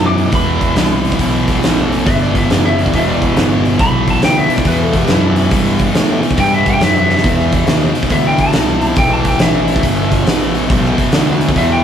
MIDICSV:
0, 0, Header, 1, 6, 480
1, 0, Start_track
1, 0, Key_signature, 1, "minor"
1, 0, Tempo, 431965
1, 369, Time_signature, 4, 2, 24, 8
1, 13154, End_track
2, 0, Start_track
2, 0, Title_t, "Lead electric guitar"
2, 0, Program_c, 0, 29
2, 68, Note_on_c, 0, 86, 107
2, 370, Note_off_c, 0, 86, 0
2, 390, Note_on_c, 0, 83, 96
2, 1781, Note_off_c, 0, 83, 0
2, 2299, Note_on_c, 0, 76, 106
2, 2453, Note_off_c, 0, 76, 0
2, 2458, Note_on_c, 0, 74, 91
2, 2610, Note_off_c, 0, 74, 0
2, 2610, Note_on_c, 0, 76, 117
2, 2788, Note_off_c, 0, 76, 0
2, 2788, Note_on_c, 0, 74, 102
2, 2937, Note_off_c, 0, 74, 0
2, 2952, Note_on_c, 0, 76, 105
2, 3112, Note_off_c, 0, 76, 0
2, 3112, Note_on_c, 0, 74, 105
2, 3260, Note_off_c, 0, 74, 0
2, 3281, Note_on_c, 0, 76, 99
2, 3425, Note_off_c, 0, 76, 0
2, 3431, Note_on_c, 0, 74, 99
2, 3593, Note_off_c, 0, 74, 0
2, 3593, Note_on_c, 0, 71, 106
2, 3843, Note_off_c, 0, 71, 0
2, 4227, Note_on_c, 0, 83, 119
2, 4533, Note_off_c, 0, 83, 0
2, 4560, Note_on_c, 0, 81, 93
2, 4705, Note_off_c, 0, 81, 0
2, 4714, Note_on_c, 0, 79, 97
2, 4862, Note_off_c, 0, 79, 0
2, 4868, Note_on_c, 0, 76, 88
2, 5040, Note_off_c, 0, 76, 0
2, 5040, Note_on_c, 0, 74, 104
2, 5185, Note_off_c, 0, 74, 0
2, 5194, Note_on_c, 0, 71, 96
2, 5356, Note_off_c, 0, 71, 0
2, 5356, Note_on_c, 0, 69, 99
2, 5512, Note_off_c, 0, 69, 0
2, 5512, Note_on_c, 0, 67, 96
2, 5660, Note_off_c, 0, 67, 0
2, 5686, Note_on_c, 0, 64, 90
2, 5842, Note_off_c, 0, 64, 0
2, 5842, Note_on_c, 0, 62, 102
2, 5994, Note_off_c, 0, 62, 0
2, 5994, Note_on_c, 0, 64, 99
2, 6452, Note_off_c, 0, 64, 0
2, 7110, Note_on_c, 0, 79, 94
2, 7259, Note_off_c, 0, 79, 0
2, 7270, Note_on_c, 0, 76, 93
2, 7419, Note_off_c, 0, 76, 0
2, 7432, Note_on_c, 0, 79, 105
2, 7580, Note_off_c, 0, 79, 0
2, 7595, Note_on_c, 0, 76, 100
2, 7741, Note_off_c, 0, 76, 0
2, 7755, Note_on_c, 0, 76, 107
2, 8677, Note_off_c, 0, 76, 0
2, 9026, Note_on_c, 0, 76, 105
2, 9176, Note_off_c, 0, 76, 0
2, 9193, Note_on_c, 0, 79, 95
2, 9339, Note_off_c, 0, 79, 0
2, 9344, Note_on_c, 0, 81, 108
2, 9959, Note_off_c, 0, 81, 0
2, 9981, Note_on_c, 0, 79, 96
2, 10133, Note_off_c, 0, 79, 0
2, 10148, Note_on_c, 0, 81, 93
2, 10308, Note_off_c, 0, 81, 0
2, 10308, Note_on_c, 0, 79, 101
2, 10456, Note_off_c, 0, 79, 0
2, 10471, Note_on_c, 0, 76, 107
2, 11391, Note_off_c, 0, 76, 0
2, 12864, Note_on_c, 0, 76, 109
2, 13010, Note_off_c, 0, 76, 0
2, 13026, Note_on_c, 0, 79, 84
2, 13154, Note_off_c, 0, 79, 0
2, 13154, End_track
3, 0, Start_track
3, 0, Title_t, "Distorted electric guitar"
3, 0, Program_c, 1, 30
3, 0, Note_on_c, 1, 40, 74
3, 0, Note_on_c, 1, 47, 71
3, 0, Note_on_c, 1, 52, 74
3, 352, Note_off_c, 1, 40, 0
3, 357, Note_on_c, 1, 40, 83
3, 359, Note_off_c, 1, 47, 0
3, 372, Note_on_c, 1, 47, 84
3, 386, Note_off_c, 1, 52, 0
3, 390, Note_on_c, 1, 52, 99
3, 1316, Note_off_c, 1, 40, 0
3, 1320, Note_on_c, 1, 40, 68
3, 1324, Note_off_c, 1, 47, 0
3, 1337, Note_on_c, 1, 47, 80
3, 1349, Note_off_c, 1, 52, 0
3, 1354, Note_on_c, 1, 52, 77
3, 2278, Note_off_c, 1, 40, 0
3, 2283, Note_on_c, 1, 40, 91
3, 2287, Note_off_c, 1, 47, 0
3, 2301, Note_on_c, 1, 47, 97
3, 2314, Note_off_c, 1, 52, 0
3, 2318, Note_on_c, 1, 52, 93
3, 3247, Note_off_c, 1, 40, 0
3, 3250, Note_off_c, 1, 47, 0
3, 3251, Note_on_c, 1, 40, 63
3, 3272, Note_on_c, 1, 47, 82
3, 3285, Note_off_c, 1, 52, 0
3, 3289, Note_on_c, 1, 52, 78
3, 4209, Note_off_c, 1, 40, 0
3, 4213, Note_on_c, 1, 40, 80
3, 4216, Note_off_c, 1, 47, 0
3, 4230, Note_on_c, 1, 47, 100
3, 4242, Note_off_c, 1, 52, 0
3, 4246, Note_on_c, 1, 52, 100
3, 5168, Note_off_c, 1, 40, 0
3, 5173, Note_on_c, 1, 40, 77
3, 5174, Note_off_c, 1, 47, 0
3, 5197, Note_on_c, 1, 47, 78
3, 5204, Note_off_c, 1, 52, 0
3, 5208, Note_on_c, 1, 52, 83
3, 6112, Note_off_c, 1, 40, 0
3, 6116, Note_on_c, 1, 40, 85
3, 6124, Note_off_c, 1, 47, 0
3, 6138, Note_on_c, 1, 47, 101
3, 6151, Note_off_c, 1, 52, 0
3, 6156, Note_on_c, 1, 52, 98
3, 7075, Note_off_c, 1, 40, 0
3, 7080, Note_on_c, 1, 40, 80
3, 7085, Note_off_c, 1, 47, 0
3, 7098, Note_on_c, 1, 47, 78
3, 7114, Note_off_c, 1, 52, 0
3, 7118, Note_on_c, 1, 52, 77
3, 8046, Note_off_c, 1, 40, 0
3, 8047, Note_off_c, 1, 47, 0
3, 8051, Note_on_c, 1, 40, 82
3, 8070, Note_on_c, 1, 47, 92
3, 8079, Note_off_c, 1, 52, 0
3, 8084, Note_on_c, 1, 52, 95
3, 8999, Note_off_c, 1, 40, 0
3, 9004, Note_on_c, 1, 40, 72
3, 9012, Note_off_c, 1, 47, 0
3, 9027, Note_on_c, 1, 47, 72
3, 9038, Note_off_c, 1, 52, 0
3, 9043, Note_on_c, 1, 52, 81
3, 9956, Note_off_c, 1, 40, 0
3, 9961, Note_on_c, 1, 40, 83
3, 9967, Note_off_c, 1, 47, 0
3, 9981, Note_on_c, 1, 47, 84
3, 9991, Note_off_c, 1, 52, 0
3, 9995, Note_on_c, 1, 52, 95
3, 10913, Note_off_c, 1, 40, 0
3, 10917, Note_on_c, 1, 40, 73
3, 10922, Note_off_c, 1, 47, 0
3, 10935, Note_on_c, 1, 47, 85
3, 10948, Note_off_c, 1, 52, 0
3, 10952, Note_on_c, 1, 52, 89
3, 11881, Note_off_c, 1, 47, 0
3, 11882, Note_off_c, 1, 40, 0
3, 11886, Note_on_c, 1, 40, 84
3, 11909, Note_on_c, 1, 47, 86
3, 11914, Note_off_c, 1, 52, 0
3, 11918, Note_on_c, 1, 52, 90
3, 12840, Note_off_c, 1, 40, 0
3, 12844, Note_on_c, 1, 40, 81
3, 12846, Note_off_c, 1, 47, 0
3, 12860, Note_on_c, 1, 47, 69
3, 12877, Note_off_c, 1, 52, 0
3, 12882, Note_on_c, 1, 52, 82
3, 13154, Note_off_c, 1, 40, 0
3, 13154, Note_off_c, 1, 47, 0
3, 13154, Note_off_c, 1, 52, 0
3, 13154, End_track
4, 0, Start_track
4, 0, Title_t, "Fingered electric bass"
4, 0, Program_c, 2, 33
4, 0, Note_on_c, 2, 42, 94
4, 354, Note_off_c, 2, 42, 0
4, 362, Note_on_c, 2, 40, 86
4, 833, Note_off_c, 2, 40, 0
4, 846, Note_on_c, 2, 36, 99
4, 1315, Note_off_c, 2, 36, 0
4, 1330, Note_on_c, 2, 35, 78
4, 1798, Note_off_c, 2, 35, 0
4, 1817, Note_on_c, 2, 33, 87
4, 2282, Note_off_c, 2, 33, 0
4, 2292, Note_on_c, 2, 31, 90
4, 2760, Note_off_c, 2, 31, 0
4, 2773, Note_on_c, 2, 30, 98
4, 3241, Note_off_c, 2, 30, 0
4, 3263, Note_on_c, 2, 28, 86
4, 3726, Note_off_c, 2, 28, 0
4, 3736, Note_on_c, 2, 31, 91
4, 4203, Note_off_c, 2, 31, 0
4, 4215, Note_on_c, 2, 35, 90
4, 4682, Note_off_c, 2, 35, 0
4, 4687, Note_on_c, 2, 38, 99
4, 4986, Note_off_c, 2, 38, 0
4, 5169, Note_on_c, 2, 40, 83
4, 5634, Note_off_c, 2, 40, 0
4, 5640, Note_on_c, 2, 42, 93
4, 6115, Note_off_c, 2, 42, 0
4, 6129, Note_on_c, 2, 43, 90
4, 6592, Note_off_c, 2, 43, 0
4, 6599, Note_on_c, 2, 45, 106
4, 6900, Note_off_c, 2, 45, 0
4, 7088, Note_on_c, 2, 43, 86
4, 7558, Note_off_c, 2, 43, 0
4, 7567, Note_on_c, 2, 42, 85
4, 8037, Note_off_c, 2, 42, 0
4, 8047, Note_on_c, 2, 40, 91
4, 8517, Note_off_c, 2, 40, 0
4, 8528, Note_on_c, 2, 39, 96
4, 8824, Note_off_c, 2, 39, 0
4, 9009, Note_on_c, 2, 38, 85
4, 9468, Note_off_c, 2, 38, 0
4, 9475, Note_on_c, 2, 36, 93
4, 9949, Note_off_c, 2, 36, 0
4, 9963, Note_on_c, 2, 35, 87
4, 10433, Note_off_c, 2, 35, 0
4, 10442, Note_on_c, 2, 33, 98
4, 10912, Note_off_c, 2, 33, 0
4, 10924, Note_on_c, 2, 31, 88
4, 11392, Note_off_c, 2, 31, 0
4, 11408, Note_on_c, 2, 33, 99
4, 11874, Note_off_c, 2, 33, 0
4, 11888, Note_on_c, 2, 35, 98
4, 12181, Note_off_c, 2, 35, 0
4, 12364, Note_on_c, 2, 38, 103
4, 12830, Note_off_c, 2, 38, 0
4, 12848, Note_on_c, 2, 40, 86
4, 13154, Note_off_c, 2, 40, 0
4, 13154, End_track
5, 0, Start_track
5, 0, Title_t, "Muted fingered electric bass strokes"
5, 5006, Note_on_c, 9, 29, 38
5, 5117, Note_off_c, 9, 29, 0
5, 6929, Note_on_c, 9, 29, 38
5, 7040, Note_off_c, 9, 29, 0
5, 8842, Note_on_c, 9, 29, 36
5, 8954, Note_off_c, 9, 29, 0
5, 12207, Note_on_c, 9, 29, 39
5, 12318, Note_off_c, 9, 29, 0
5, 13154, End_track
6, 0, Start_track
6, 0, Title_t, "Drums"
6, 198, Note_on_c, 9, 46, 50
6, 309, Note_off_c, 9, 46, 0
6, 357, Note_on_c, 9, 46, 74
6, 363, Note_on_c, 9, 36, 107
6, 468, Note_off_c, 9, 46, 0
6, 474, Note_off_c, 9, 36, 0
6, 679, Note_on_c, 9, 36, 87
6, 679, Note_on_c, 9, 46, 57
6, 790, Note_off_c, 9, 36, 0
6, 790, Note_off_c, 9, 46, 0
6, 845, Note_on_c, 9, 46, 72
6, 854, Note_on_c, 9, 38, 101
6, 956, Note_off_c, 9, 46, 0
6, 965, Note_off_c, 9, 38, 0
6, 1165, Note_on_c, 9, 46, 64
6, 1244, Note_on_c, 9, 36, 89
6, 1276, Note_off_c, 9, 46, 0
6, 1324, Note_on_c, 9, 46, 77
6, 1326, Note_off_c, 9, 36, 0
6, 1326, Note_on_c, 9, 36, 88
6, 1435, Note_off_c, 9, 46, 0
6, 1437, Note_off_c, 9, 36, 0
6, 1643, Note_on_c, 9, 36, 82
6, 1644, Note_on_c, 9, 46, 60
6, 1754, Note_off_c, 9, 36, 0
6, 1755, Note_off_c, 9, 46, 0
6, 1813, Note_on_c, 9, 46, 75
6, 1822, Note_on_c, 9, 38, 99
6, 1924, Note_off_c, 9, 46, 0
6, 1933, Note_off_c, 9, 38, 0
6, 2137, Note_on_c, 9, 46, 56
6, 2249, Note_off_c, 9, 46, 0
6, 2296, Note_on_c, 9, 36, 108
6, 2299, Note_on_c, 9, 46, 71
6, 2407, Note_off_c, 9, 36, 0
6, 2410, Note_off_c, 9, 46, 0
6, 2470, Note_on_c, 9, 38, 31
6, 2581, Note_off_c, 9, 38, 0
6, 2612, Note_on_c, 9, 36, 85
6, 2614, Note_on_c, 9, 46, 57
6, 2723, Note_off_c, 9, 36, 0
6, 2725, Note_off_c, 9, 46, 0
6, 2780, Note_on_c, 9, 46, 76
6, 2789, Note_on_c, 9, 38, 97
6, 2891, Note_off_c, 9, 46, 0
6, 2900, Note_off_c, 9, 38, 0
6, 3101, Note_on_c, 9, 46, 58
6, 3179, Note_on_c, 9, 36, 85
6, 3212, Note_off_c, 9, 46, 0
6, 3262, Note_off_c, 9, 36, 0
6, 3262, Note_on_c, 9, 36, 90
6, 3269, Note_on_c, 9, 46, 74
6, 3374, Note_off_c, 9, 36, 0
6, 3380, Note_off_c, 9, 46, 0
6, 3576, Note_on_c, 9, 36, 80
6, 3580, Note_on_c, 9, 46, 49
6, 3687, Note_off_c, 9, 36, 0
6, 3692, Note_off_c, 9, 46, 0
6, 3740, Note_on_c, 9, 46, 69
6, 3749, Note_on_c, 9, 38, 110
6, 3851, Note_off_c, 9, 46, 0
6, 3860, Note_off_c, 9, 38, 0
6, 4059, Note_on_c, 9, 46, 55
6, 4170, Note_off_c, 9, 46, 0
6, 4215, Note_on_c, 9, 46, 72
6, 4216, Note_on_c, 9, 36, 109
6, 4326, Note_off_c, 9, 46, 0
6, 4327, Note_off_c, 9, 36, 0
6, 4528, Note_on_c, 9, 46, 55
6, 4529, Note_on_c, 9, 36, 84
6, 4639, Note_off_c, 9, 46, 0
6, 4640, Note_off_c, 9, 36, 0
6, 4691, Note_on_c, 9, 46, 74
6, 4700, Note_on_c, 9, 38, 106
6, 4802, Note_off_c, 9, 46, 0
6, 4811, Note_off_c, 9, 38, 0
6, 5001, Note_on_c, 9, 46, 62
6, 5089, Note_on_c, 9, 36, 93
6, 5112, Note_off_c, 9, 46, 0
6, 5166, Note_on_c, 9, 46, 78
6, 5170, Note_off_c, 9, 36, 0
6, 5170, Note_on_c, 9, 36, 96
6, 5277, Note_off_c, 9, 46, 0
6, 5281, Note_off_c, 9, 36, 0
6, 5480, Note_on_c, 9, 46, 56
6, 5484, Note_on_c, 9, 36, 81
6, 5592, Note_off_c, 9, 46, 0
6, 5595, Note_off_c, 9, 36, 0
6, 5641, Note_on_c, 9, 46, 76
6, 5650, Note_on_c, 9, 38, 97
6, 5752, Note_off_c, 9, 46, 0
6, 5761, Note_off_c, 9, 38, 0
6, 5956, Note_on_c, 9, 46, 58
6, 6067, Note_off_c, 9, 46, 0
6, 6124, Note_on_c, 9, 46, 82
6, 6127, Note_on_c, 9, 36, 110
6, 6235, Note_off_c, 9, 46, 0
6, 6239, Note_off_c, 9, 36, 0
6, 6435, Note_on_c, 9, 46, 61
6, 6441, Note_on_c, 9, 36, 88
6, 6546, Note_off_c, 9, 46, 0
6, 6552, Note_off_c, 9, 36, 0
6, 6608, Note_on_c, 9, 46, 72
6, 6617, Note_on_c, 9, 38, 101
6, 6719, Note_off_c, 9, 46, 0
6, 6728, Note_off_c, 9, 38, 0
6, 6924, Note_on_c, 9, 46, 62
6, 7008, Note_on_c, 9, 36, 92
6, 7035, Note_off_c, 9, 46, 0
6, 7085, Note_on_c, 9, 46, 76
6, 7089, Note_off_c, 9, 36, 0
6, 7089, Note_on_c, 9, 36, 98
6, 7196, Note_off_c, 9, 46, 0
6, 7200, Note_off_c, 9, 36, 0
6, 7399, Note_on_c, 9, 46, 55
6, 7403, Note_on_c, 9, 36, 84
6, 7510, Note_off_c, 9, 46, 0
6, 7514, Note_off_c, 9, 36, 0
6, 7564, Note_on_c, 9, 46, 74
6, 7573, Note_on_c, 9, 38, 104
6, 7675, Note_off_c, 9, 46, 0
6, 7684, Note_off_c, 9, 38, 0
6, 7889, Note_on_c, 9, 38, 63
6, 7974, Note_off_c, 9, 38, 0
6, 7974, Note_on_c, 9, 38, 76
6, 8040, Note_on_c, 9, 46, 74
6, 8047, Note_on_c, 9, 36, 105
6, 8085, Note_off_c, 9, 38, 0
6, 8151, Note_off_c, 9, 46, 0
6, 8158, Note_off_c, 9, 36, 0
6, 8213, Note_on_c, 9, 38, 31
6, 8324, Note_off_c, 9, 38, 0
6, 8359, Note_on_c, 9, 46, 58
6, 8363, Note_on_c, 9, 36, 86
6, 8470, Note_off_c, 9, 46, 0
6, 8474, Note_off_c, 9, 36, 0
6, 8523, Note_on_c, 9, 46, 69
6, 8531, Note_on_c, 9, 38, 106
6, 8634, Note_off_c, 9, 46, 0
6, 8643, Note_off_c, 9, 38, 0
6, 8835, Note_on_c, 9, 46, 57
6, 8921, Note_on_c, 9, 36, 87
6, 8946, Note_off_c, 9, 46, 0
6, 8997, Note_on_c, 9, 46, 76
6, 9005, Note_off_c, 9, 36, 0
6, 9005, Note_on_c, 9, 36, 95
6, 9108, Note_off_c, 9, 46, 0
6, 9116, Note_off_c, 9, 36, 0
6, 9312, Note_on_c, 9, 46, 56
6, 9319, Note_on_c, 9, 36, 81
6, 9423, Note_off_c, 9, 46, 0
6, 9430, Note_off_c, 9, 36, 0
6, 9477, Note_on_c, 9, 46, 73
6, 9486, Note_on_c, 9, 38, 108
6, 9588, Note_off_c, 9, 46, 0
6, 9597, Note_off_c, 9, 38, 0
6, 9794, Note_on_c, 9, 46, 57
6, 9905, Note_off_c, 9, 46, 0
6, 9955, Note_on_c, 9, 46, 76
6, 9964, Note_on_c, 9, 36, 116
6, 10066, Note_off_c, 9, 46, 0
6, 10075, Note_off_c, 9, 36, 0
6, 10273, Note_on_c, 9, 46, 59
6, 10279, Note_on_c, 9, 36, 89
6, 10384, Note_off_c, 9, 46, 0
6, 10390, Note_off_c, 9, 36, 0
6, 10436, Note_on_c, 9, 46, 78
6, 10445, Note_on_c, 9, 38, 107
6, 10548, Note_off_c, 9, 46, 0
6, 10556, Note_off_c, 9, 38, 0
6, 10755, Note_on_c, 9, 46, 65
6, 10844, Note_on_c, 9, 36, 96
6, 10866, Note_off_c, 9, 46, 0
6, 10923, Note_on_c, 9, 46, 80
6, 10928, Note_off_c, 9, 36, 0
6, 10928, Note_on_c, 9, 36, 87
6, 11034, Note_off_c, 9, 46, 0
6, 11039, Note_off_c, 9, 36, 0
6, 11241, Note_on_c, 9, 46, 59
6, 11242, Note_on_c, 9, 36, 79
6, 11352, Note_off_c, 9, 46, 0
6, 11353, Note_off_c, 9, 36, 0
6, 11408, Note_on_c, 9, 46, 77
6, 11417, Note_on_c, 9, 38, 103
6, 11519, Note_off_c, 9, 46, 0
6, 11528, Note_off_c, 9, 38, 0
6, 11720, Note_on_c, 9, 46, 56
6, 11831, Note_off_c, 9, 46, 0
6, 11889, Note_on_c, 9, 46, 73
6, 11890, Note_on_c, 9, 36, 109
6, 12000, Note_off_c, 9, 46, 0
6, 12001, Note_off_c, 9, 36, 0
6, 12058, Note_on_c, 9, 38, 34
6, 12169, Note_off_c, 9, 38, 0
6, 12201, Note_on_c, 9, 46, 60
6, 12202, Note_on_c, 9, 36, 88
6, 12312, Note_off_c, 9, 46, 0
6, 12314, Note_off_c, 9, 36, 0
6, 12357, Note_on_c, 9, 46, 74
6, 12366, Note_on_c, 9, 38, 109
6, 12468, Note_off_c, 9, 46, 0
6, 12477, Note_off_c, 9, 38, 0
6, 12678, Note_on_c, 9, 46, 56
6, 12763, Note_on_c, 9, 36, 90
6, 12789, Note_off_c, 9, 46, 0
6, 12844, Note_on_c, 9, 46, 71
6, 12847, Note_off_c, 9, 36, 0
6, 12847, Note_on_c, 9, 36, 95
6, 12955, Note_off_c, 9, 46, 0
6, 12958, Note_off_c, 9, 36, 0
6, 13154, End_track
0, 0, End_of_file